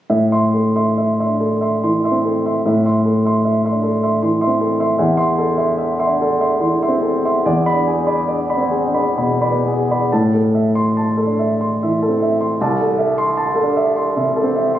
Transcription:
0.10 2.62 A2 soft
0.10 0.31 E5 soft
0.32 0.51 E5 soft
0.32 0.51 C6 medium
0.54 0.88 A4 soft
0.76 0.95 E5 soft
0.76 0.95 C6 soft
0.98 1.19 E5 soft
1.20 1.39 E5 soft
1.20 1.39 C6 soft
1.26 1.55 D4 soft
1.40 1.75 A4 soft
1.61 1.81 E5 soft
1.61 1.81 C6 soft
1.84 2.28 E3 soft
1.84 2.04 C6 soft
2.04 2.23 E5 soft
2.04 2.23 C6 soft
2.11 2.55 C4 soft
2.25 2.57 A4 soft
2.46 2.64 E5 soft
2.46 2.64 C6 soft
2.66 4.96 A2 medium
2.66 2.84 E5 soft
2.85 3.03 E5 soft
2.85 3.04 C6 soft
3.05 3.37 A4 soft
3.25 3.43 E5 soft
3.25 3.44 C6 soft
3.45 3.63 E5 soft
3.65 3.82 E5 soft
3.65 3.83 C6 soft
3.71 3.97 D4 soft
3.83 4.15 A4 soft
4.03 4.21 E5 soft
4.03 4.21 C6 soft
4.23 4.64 E3 soft
4.23 4.40 C6 soft
4.41 4.59 E5 soft
4.41 4.59 C6 soft
4.47 4.89 C4 soft
4.61 4.92 A4 soft
4.80 4.97 E5 soft
4.80 4.98 C6 soft
4.98 7.39 E2 medium
4.98 5.16 E5 soft
5.17 5.36 E5 soft
5.17 5.36 C6 medium
5.38 5.71 A4 soft
5.58 5.76 E5 soft
5.58 5.77 C6 medium
5.78 5.98 E5 medium
5.99 6.18 E5 soft
5.99 6.18 C6 medium
6.07 6.34 D4 soft
6.22 6.53 A4 soft
6.41 6.59 E5 soft
6.41 6.59 C6 soft
6.60 7.04 E3 soft
6.60 6.81 C6 soft
6.83 7.00 E5 soft
6.83 7.00 C6 medium
6.88 7.32 C4 soft
7.02 7.35 A4 soft
7.25 7.43 E5 soft
7.25 7.43 C6 soft
7.46 10.09 E2 medium
7.46 7.64 D5 medium
7.66 7.84 D5 soft
7.66 7.84 B5 medium
7.73 8.17 D4 soft
7.87 8.20 G#4 soft
8.07 8.26 D5 soft
8.07 8.26 B5 medium
8.28 8.74 D4 soft
8.28 8.48 D5 soft
8.50 8.70 D5 soft
8.50 8.70 B5 soft
8.57 8.87 C4 soft
8.71 9.08 G#4 soft
8.87 9.36 D4 soft
8.94 9.15 D5 soft
8.94 9.15 B5 soft
9.18 9.69 B2 soft
9.18 9.40 B5 soft
9.41 9.63 D5 soft
9.41 9.63 B5 soft
9.50 10.01 B3 soft
9.67 10.04 G#4 soft
9.91 10.10 D5 soft
9.91 10.11 B5 soft
10.12 12.55 A2 medium
10.12 10.46 A5 medium
10.34 10.68 A4 soft
10.55 10.88 E5 soft
10.75 11.09 C6 medium
10.97 11.30 A5 soft
11.17 11.51 A4 soft
11.27 11.53 D4 soft
11.39 11.72 E5 soft
11.61 11.92 C6 soft
11.83 12.24 E3 soft
11.83 12.13 E5 soft
12.03 12.33 A4 soft
12.09 12.49 C4 soft
12.22 12.52 E5 soft
12.41 12.59 C6 soft
12.61 14.79 C2 medium
12.61 12.91 A5 soft
12.80 13.10 A4 soft
12.99 13.28 E5 soft
13.18 13.48 C6 medium
13.37 13.68 A5 soft
13.56 13.87 A4 medium
13.63 13.89 D4 soft
13.77 14.07 E5 soft
13.96 14.27 C6 soft
14.16 14.58 C3 soft
14.16 14.47 E5 soft
14.36 14.67 A4 medium
14.44 14.79 C4 soft
14.56 14.79 E5 soft
14.75 14.79 C6 soft

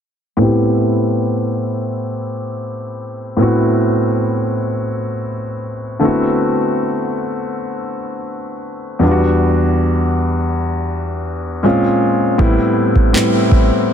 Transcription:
0.37 3.34 A2 medium
0.37 3.35 B3 medium
0.37 3.35 C4 medium
0.41 3.36 E4 medium
0.41 3.37 G4 medium
3.37 5.96 A2 medium
3.37 5.97 B3 medium
3.37 5.98 C4 medium
3.41 5.99 E4 medium
3.41 5.99 F#4 medium
5.99 8.97 D3 medium
5.99 8.97 A3 medium
5.99 8.98 B3 medium
5.99 8.98 C4 medium
6.04 8.99 E4 medium
6.04 8.99 F#4 medium
8.99 11.59 E2 medium
8.99 11.60 G3 medium
8.99 11.60 B3 medium
9.03 11.61 D4 medium
9.03 9.10 F4 medium
9.11 11.65 F#4 medium
11.63 12.39 A#2 medium
11.63 12.39 G#3 medium
11.63 12.39 C4 medium
11.63 12.40 C#4 medium
11.63 12.40 F4 medium
12.38 12.91 A2 medium
12.38 12.92 G3 medium
12.38 12.92 B3 medium
12.38 12.92 C4 medium
12.38 12.93 E4 medium
12.38 kick loud
12.96 kick medium
13.13 13.93 A2 medium
13.13 13.93 G3 medium
13.13 13.93 B3 medium
13.13 13.93 C4 medium
13.13 13.93 E4 medium
13.13 clap loud
13.52 kick medium

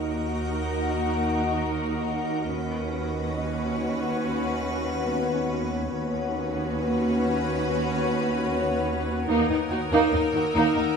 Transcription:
0.00 2.48 D#2 soft
0.00 2.49 D#2 soft
0.00 2.48 D#4 soft
0.00 2.48 F#4 soft
0.00 2.48 A#4 soft
0.00 2.06 C#5 soft
0.00 2.48 D#5 soft
0.00 2.48 F#5 soft
2.52 5.86 D#2 soft
2.52 5.87 C#4 soft
2.52 5.87 F#4 soft
2.52 5.86 B4 soft
2.52 5.89 B4 soft
2.52 5.90 C#5 soft
2.52 5.87 F#5 soft
3.37 5.86 D#5 soft
5.06 7.56 B3 soft
5.06 7.56 B4 soft
5.90 9.24 D#2 soft
5.90 9.25 D#2 soft
5.90 9.24 C#4 medium
5.90 9.25 F#4 soft
5.90 9.24 B4 soft
5.90 9.24 B4 medium
5.90 9.25 C#5 soft
5.90 9.24 F#5 soft
9.28 9.36 D#2 medium
9.28 9.48 A#3 medium
9.28 9.48 D#4 medium
9.28 10.97 D#4 medium
9.28 10.97 A#4 soft
9.28 10.97 A#4 medium
9.28 10.97 F#5 medium
9.28 10.97 D#6 soft
9.49 9.57 D#2 soft
9.49 9.58 D#4 soft
9.71 9.79 D#2 soft
9.71 9.79 D#4 soft
9.71 9.79 F#4 soft
9.92 10.00 D#2 medium
9.92 10.12 A#3 medium
9.92 10.12 D#4 medium
10.12 10.21 D#2 soft
10.12 10.21 D#4 soft
10.12 10.22 D#4 soft
10.12 10.97 A#4 soft
10.12 10.97 E6 soft
10.34 10.42 D#2 soft
10.34 10.43 D#4 soft
10.34 10.43 F#4 soft
10.55 10.63 D#2 medium
10.55 10.75 A#3 medium
10.55 10.75 D#4 medium
10.76 10.84 D#2 soft
10.76 10.84 D#4 soft
10.76 10.85 D#4 soft

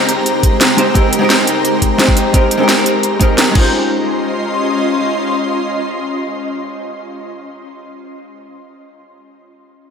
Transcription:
0.00 0.49 G#3 medium
0.00 3.51 G#3 medium
0.00 0.50 C4 medium
0.00 0.50 D#4 medium
0.00 0.51 G4 medium
0.00 3.51 G4 medium
0.00 0.52 A#4 loud
0.00 3.51 C5 medium
0.00 3.51 A#5 medium
0.09 closed hi-hat medium
0.26 closed hi-hat medium
0.43 kick medium
0.43 closed hi-hat medium
0.61 snare loud
0.61 closed hi-hat medium
0.77 0.84 G#3 medium
0.77 0.85 C4 medium
0.77 0.85 D#4 medium
0.77 0.85 G4 medium
0.77 0.86 C5 medium
0.77 closed hi-hat medium
0.94 1.18 G#3 medium
0.94 1.19 C4 medium
0.94 1.19 D#4 medium
0.94 1.20 G4 medium
0.94 1.20 A#4 loud
0.94 kick loud
0.94 closed hi-hat medium
1.13 closed hi-hat medium
1.19 1.96 G#3 medium
1.19 1.97 C4 medium
1.19 1.97 D#4 medium
1.23 1.98 G4 medium
1.23 1.99 A#4 loud
1.30 snare loud
1.30 closed hi-hat medium
1.47 closed hi-hat medium
1.65 closed hi-hat medium
1.82 kick medium
1.82 closed hi-hat medium
1.98 2.31 G#3 medium
1.98 2.32 C4 medium
1.98 2.32 D#4 medium
1.98 2.32 G4 medium
1.98 2.33 C5 loud
1.98 snare loud
1.98 closed hi-hat medium
2.08 kick loud
2.17 closed hi-hat medium
2.33 2.56 G#3 medium
2.33 2.58 C4 medium
2.33 2.58 D#4 medium
2.33 2.59 G4 medium
2.33 2.59 A#4 medium
2.33 kick loud
2.33 closed hi-hat medium
2.51 closed hi-hat medium
2.57 3.18 G#3 medium
2.57 3.18 C4 medium
2.57 3.19 D#4 medium
2.62 3.20 G4 medium
2.62 3.20 A#4 loud
2.69 snare loud
2.69 closed hi-hat medium
2.86 closed hi-hat medium
3.03 closed hi-hat medium
3.19 3.50 G#3 medium
3.19 3.53 C4 medium
3.19 3.53 D#4 medium
3.19 3.54 G4 medium
3.19 3.54 A#4 loud
3.19 kick medium
3.19 closed hi-hat medium
3.38 snare loud
3.38 closed hi-hat medium
3.51 7.63 G#3 medium
3.51 7.65 C#4 medium
3.55 7.26 C#4 medium
3.55 7.67 D#4 medium
3.55 7.26 F4 medium
3.55 7.69 F4 medium
3.55 7.26 D#5 medium
3.55 7.26 C6 medium
3.55 kick loud
3.55 crash medium
3.60 7.71 C5 medium

